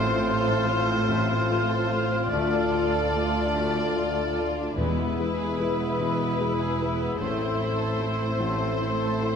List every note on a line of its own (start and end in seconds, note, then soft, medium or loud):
0.00 0.24 A1 medium
0.00 2.28 A1 medium
0.00 0.24 A2 medium
0.00 2.28 A2 medium
0.00 2.28 C4 medium
0.00 4.61 F4 medium
0.00 4.75 F4 medium
0.00 2.28 A4 medium
0.00 2.28 C5 medium
0.00 4.46 F5 medium
0.00 2.28 C6 medium
0.04 0.25 C4 medium
0.25 0.62 A3 soft
0.25 0.45 F4 medium
0.25 0.63 F4 soft
0.25 0.63 C5 medium
0.46 0.66 A4 medium
0.67 1.04 A3 soft
0.67 0.87 F4 medium
0.67 1.04 F4 soft
0.67 1.05 C5 medium
0.87 1.08 C4 medium
1.09 1.49 A1 medium
1.09 1.48 A2 medium
1.09 1.29 A3 medium
1.29 1.49 C4 medium
1.50 1.87 A3 medium
1.50 1.70 F4 medium
1.50 1.88 F4 soft
1.50 1.88 C5 medium
1.69 1.90 A4 medium
1.89 2.28 A3 soft
1.89 2.11 F4 medium
1.89 2.29 F4 soft
1.89 2.29 C5 soft
2.11 2.32 C4 medium
2.31 4.74 D2 medium
2.31 2.73 D2 medium
2.31 2.73 D3 medium
2.31 2.51 A3 medium
2.31 4.61 A3 medium
2.31 4.47 A4 medium
2.31 4.78 D5 medium
2.31 4.47 A5 medium
2.52 2.73 D4 medium
2.73 3.11 A3 soft
2.73 2.93 F4 medium
2.73 3.11 F4 soft
2.73 3.11 D5 medium
2.94 3.14 A4 medium
3.15 3.52 A3 soft
3.15 3.35 F4 medium
3.15 3.52 F4 soft
3.15 3.52 D5 medium
3.35 3.55 D4 medium
3.55 3.96 D2 medium
3.55 3.95 D3 medium
3.55 3.76 A3 medium
3.76 3.96 D4 medium
3.97 4.34 A3 soft
3.97 4.17 F4 medium
3.97 4.34 F4 soft
3.97 4.34 D5 medium
4.17 4.37 A4 medium
4.37 4.74 A3 soft
4.37 4.58 F4 medium
4.37 4.75 F4 soft
4.37 4.75 D5 soft
4.58 4.78 D4 medium
4.78 5.17 E1 medium
4.78 7.16 E1 medium
4.78 5.95 E2 medium
4.78 5.17 E2 medium
4.78 7.16 E2 medium
4.78 4.97 G#3 medium
4.78 7.20 G#3 medium
4.78 9.36 E4 medium
4.78 7.16 G#4 medium
4.78 7.17 B4 medium
4.78 9.36 E5 medium
4.78 7.16 B5 medium
4.98 5.18 B3 medium
5.18 5.55 G#3 soft
5.18 5.38 E4 medium
5.18 5.55 E4 soft
5.18 5.56 B4 soft
5.39 5.59 G#4 medium
5.59 5.96 G#3 soft
5.59 5.79 E4 medium
5.59 5.96 E4 soft
5.59 5.96 B4 soft
5.78 5.99 B3 medium
5.99 6.39 E1 medium
5.99 6.39 E2 medium
5.99 6.19 G#3 medium
6.19 6.39 B3 medium
6.40 6.76 G#3 soft
6.40 6.60 E4 medium
6.40 6.77 E4 soft
6.40 6.77 B4 medium
6.61 6.80 G#4 medium
6.81 7.17 G#3 soft
6.81 7.00 E4 medium
6.81 7.17 E4 soft
6.81 7.17 B4 soft
7.01 7.20 B3 medium
7.19 7.59 A1 medium
7.19 9.36 A1 medium
7.19 7.59 A2 medium
7.19 9.36 A2 medium
7.19 7.38 A3 medium
7.19 9.36 C4 medium
7.19 9.36 A4 medium
7.19 9.36 C5 medium
7.19 9.36 C6 medium
7.40 7.60 C4 medium
7.60 7.96 A3 soft
7.60 7.80 E4 medium
7.60 7.96 E4 soft
7.60 7.96 C5 soft
7.79 7.99 A4 medium
8.00 8.37 A3 soft
8.00 8.20 E4 medium
8.00 8.37 E4 soft
8.00 8.37 C5 soft
8.20 8.40 C4 medium
8.40 8.80 A1 medium
8.40 8.80 A2 medium
8.40 8.61 A3 medium
8.61 8.81 C4 medium
8.80 9.17 A3 soft
8.80 9.17 E4 soft
8.80 9.01 E4 medium
8.80 9.18 C5 medium
9.02 9.22 A4 medium
9.21 9.36 A3 soft
9.21 9.36 E4 soft
9.21 9.36 E4 medium
9.21 9.36 C5 soft